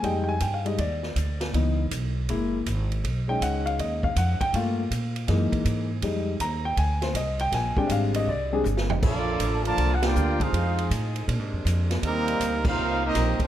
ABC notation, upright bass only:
X:1
M:4/4
L:1/8
Q:"Swing" 1/4=160
K:Bbmix
V:1 name="Upright bass" clef=bass
F,,2 G,,2 E,,2 D,,2 | _D,,2 _C,,2 _G,,,2 A,,,2 | =B,,,2 ^C,,2 ^D,,2 F,, z | G,,2 B,,2 _G,, z A,,2 |
F,,2 E,,2 D,,2 C,,2 | B,,, z A,,,2 C,,2 G,,,2 | [K:Bb] B,,,2 A,,,2 C,,2 D,,2 | F,,2 A,,2 (3B,, _A,, F,, F,,2 |
E,,2 D,,2 C,,2 B,,, z |]